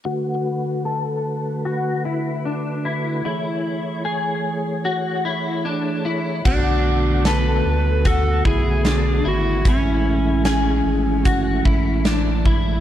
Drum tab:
CC |--------|--------|x-------|--------|
HH |--------|--------|--x-x-x-|x-x-x-x-|
SD |--------|--------|--o---o-|--o---o-|
BD |--------|--------|o---oo--|o---oo-o|